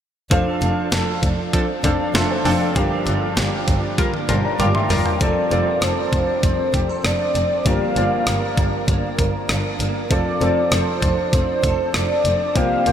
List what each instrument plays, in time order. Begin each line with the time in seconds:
0.31 double bass F1, clean electric guitar F3 A4, grand piano D4 A4 C5 F5, kick, closed hi-hat
0.62 double bass F1, clean electric guitar D4, closed hi-hat
0.92 double bass F1, clean electric guitar A4, snare, closed hi-hat
1.23 double bass F1, clean electric guitar D4, kick, closed hi-hat
1.53 analog polysynth F3 D4 A4, clean electric guitar C4, kick, closed hi-hat
1.84 double bass F1, analog polysynth F3 D4 A4, grand piano D4 A4 C5 F5, clean electric guitar D4, kick, closed hi-hat
2.15 double bass F1, analog polysynth F3 D4 A4, clean electric guitar A4, grand piano E5 C6, snare, closed hi-hat
2.30 grand piano C5 A5
2.45 double bass F1, analog polysynth F3 D4 A4, clean electric guitar C4, grand piano G5, open hi-hat
2.61 grand piano A4 F5
2.75 double bass G1, grand piano G2 D4 G4 A#4 F5, clean electric guitar F3 G4, kick, closed hi-hat
3.07 double bass G1, clean electric guitar D4, closed hi-hat
3.37 double bass G1, clean electric guitar G4, snare, closed hi-hat
3.68 double bass G1, clean electric guitar D4, kick, closed hi-hat
3.98 analog polysynth G3 F4 A#4, clean electric guitar A#3, kick, closed hi-hat, high tom
4.14 high tom
4.29 double bass G1, analog polysynth G3 F4 A#4, clean electric guitar D4, grand piano C5 A5, closed hi-hat, mid tom
4.44 grand piano D5 A#5
4.59 double bass G1, analog polysynth G3 F4 A#4, clean electric guitar G4, grand piano F5 D6, closed hi-hat, mid tom
4.75 grand piano E5 C6, mid tom
4.90 double bass G1, analog polysynth G3 F4 A#4, clean electric guitar A#3, grand piano D5 A#5, floor tom, open hi-hat
5.06 grand piano A#4 G5, floor tom
5.20 double bass F1, clean electric guitar F3 A4, grand piano C4 F4 A4 D5, soft synth lead D5, kick, closed hi-hat
5.51 double bass F1, grand piano C4 F4 A4 D5, clean electric guitar C4, closed hi-hat
5.82 double bass F1, clean electric guitar A4, soft synth lead C5, cross-stick, closed hi-hat
6.13 double bass F1, clean electric guitar D4, kick, closed hi-hat
6.43 double bass F1, clean electric guitar C4, soft synth lead C5, kick, closed hi-hat
6.74 double bass F1, clean electric guitar G4, kick, closed hi-hat
6.89 clean electric guitar A4
7.05 double bass F1, clean electric guitar D4, soft synth lead D5, cross-stick, closed hi-hat
7.35 double bass F1, clean electric guitar C4, closed hi-hat
7.65 double bass G1, grand piano G2 A#3 F4 G4 D5, clean electric guitar F3 A#4, soft synth lead F5, kick, closed hi-hat
7.96 double bass G1, grand piano A#3 F4 G4 D5, clean electric guitar A#3, closed hi-hat
8.27 double bass G1, clean electric guitar A#4, cross-stick, closed hi-hat
8.57 double bass G1, clean electric guitar D4, kick, closed hi-hat
8.88 double bass G1, clean electric guitar A#3, kick, closed hi-hat
9.19 double bass G1, clean electric guitar A#4, kick, closed hi-hat
9.49 double bass G1, clean electric guitar D4, cross-stick, closed hi-hat
9.80 double bass G1, clean electric guitar A#3, closed hi-hat
10.10 double bass F1, clean electric guitar F3 A4, grand piano C4 F4 A4 D5, soft synth lead D5, kick, closed hi-hat
10.41 double bass F1, grand piano C4 F4 A4 D5, clean electric guitar C4, closed hi-hat
10.72 double bass F1, clean electric guitar A4, soft synth lead C5, cross-stick, closed hi-hat
11.02 double bass F1, clean electric guitar D4, kick, closed hi-hat
11.33 double bass F1, clean electric guitar C4, soft synth lead C5, kick, closed hi-hat
11.63 double bass F1, clean electric guitar A4, kick, closed hi-hat
11.94 double bass F1, clean electric guitar D4, soft synth lead D5, cross-stick, closed hi-hat
12.25 double bass F1, clean electric guitar C4, closed hi-hat
12.55 double bass C2, grand piano C3 A#3 F4 G4 C5, clean electric guitar F3 G4, soft synth lead F5, kick, closed hi-hat
12.86 double bass C2, grand piano A#3 F4 G4 C5, clean electric guitar A#3, closed hi-hat